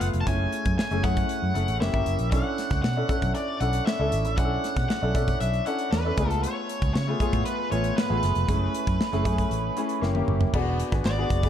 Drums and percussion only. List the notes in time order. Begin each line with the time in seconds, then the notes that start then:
0.01 closed hi-hat
0.14 closed hi-hat
0.27 kick, closed hi-hat
0.52 closed hi-hat
0.65 kick, closed hi-hat
0.79 snare
0.91 closed hi-hat
1.04 kick, closed hi-hat
1.17 kick, closed hi-hat
1.29 closed hi-hat
1.55 closed hi-hat
1.68 closed hi-hat
1.82 snare
1.94 kick, closed hi-hat
2.06 closed hi-hat
2.19 closed hi-hat
2.32 kick, closed hi-hat
2.58 snare, closed hi-hat
2.70 kick, snare, closed hi-hat
2.84 snare
3.09 kick, closed hi-hat
3.22 kick, closed hi-hat
3.35 closed hi-hat
3.61 closed hi-hat
3.73 closed hi-hat
3.87 snare
4.12 closed hi-hat
4.25 closed hi-hat
4.38 kick, closed hi-hat
4.64 snare, closed hi-hat
4.77 kick, snare, closed hi-hat
4.90 snare
5.15 kick, closed hi-hat
5.28 kick, closed hi-hat
5.41 closed hi-hat
5.54 closed hi-hat
5.66 closed hi-hat
5.79 closed hi-hat
5.93 snare
6.17 kick, closed hi-hat
6.31 closed hi-hat
6.44 closed hi-hat
6.69 closed hi-hat
6.82 kick, closed hi-hat
6.96 snare
7.20 kick, closed hi-hat
7.33 kick, closed hi-hat
7.46 closed hi-hat
7.72 closed hi-hat
7.84 closed hi-hat
7.98 snare
8.23 snare, closed hi-hat
8.35 closed hi-hat
8.49 kick, closed hi-hat
8.74 closed hi-hat
8.87 kick, closed hi-hat
9.01 snare
9.13 closed hi-hat
9.25 kick, closed hi-hat
9.38 kick, closed hi-hat
9.51 closed hi-hat
9.77 closed hi-hat
9.89 closed hi-hat
10.03 snare
10.15 high tom
10.28 mid tom
10.41 floor tom
10.54 kick, crash
10.80 closed hi-hat
10.92 kick, snare, closed hi-hat
11.05 snare, clap
11.30 kick, closed hi-hat
11.43 kick, closed hi-hat